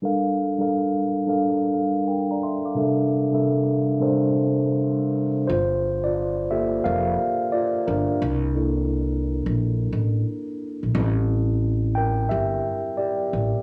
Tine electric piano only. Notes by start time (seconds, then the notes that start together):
0.02 G3 D4 A4 A#4 F5
0.58 G3 D4 A4 A#4 F5
1.26 G3 D4 A4 A#4 F5
1.74 A4 F5
2.08 A#4 G5
2.31 D5 A#5
2.44 E5 C6
2.66 F5 D6
2.75 C3 G3 D4 A4 A#4 E5
3.32 C3 G3 D4 A4 A#4 E5
3.99 C3 G3 D4 A4 A#4 C5
5.48 F4 C5
6.04 F4 D5
6.51 A#3 F4 G4 A4 E5
6.84 A#4 F5
7.52 F4 D5
7.87 D4 A#4
8.55 A#3 D4 E4 A4
10.94 G3 C4 E4
11.95 A#4 G5
12.29 G4 E5
12.97 G4 D5